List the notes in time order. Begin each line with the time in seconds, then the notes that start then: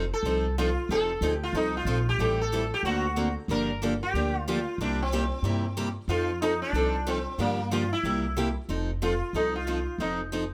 Already playing: F1
0.13 A4
0.23 C2 F3 C4 D#4
0.27 A4
0.58 F3 C4 D#4 F4 A4
0.89 F1 F3 C4 D#4 A4
1.21 D2 F3 C4 D#4 A4
1.43 F4
1.53 C2 F3 C4 D#4 A4
1.77 F4
1.85 A#1 F3 C4 D#4 A4
2.09 G4
2.18 A1 E3 G3 C4 E4 A4
2.41 A4
2.52 E3 G3 C4 E4 A4
2.74 G4
2.83 D2 D3 A#3 C4 F#4 C5
3.16 D3 A#3 C4 F#4 C5
3.48 G1 D3 F3 A#3 D4 G4 A#4
3.82 D3 F3 A#3 D4 G4
4.03 G4
4.14 D2 D3 F3 A#3 D4 G4
4.48 D3 F3 A#3 D4 F4 G4
4.78 C2 C3 G3 A#3 D4 E4 G4
5.02 C4
5.12 C3 G3 A#3 E4 G4
5.42 G2 C3 G3 A#3 E4 G4
5.77 C3 G3 A#3 E4 G4
6.08 F2 F3 C4 D#4 F4 A4
6.42 F3 C4 D#4 A4
6.62 D4
6.73 C2 F3 C4 D#4 A4
7.07 F3 C4 D#4 A4
7.38 G2 D3 F3 A#3 D4 G4
7.71 D3 F3 A#3 D4 F4 G4
7.93 E4
8.04 C2 C3 G3 A#3 E4 G4
8.37 C3 G3 A#3 E4 G4
8.69 F1 F3 C4 D#4 A4
9.02 F3 C4 D#4 F4 A4
9.33 C2 F3 C4 D#4 A4
9.56 F4
9.67 F3 C4 D#4 A4
9.98 F1 F3 C4 D#4 A4
10.32 F3 C4 D#4 A4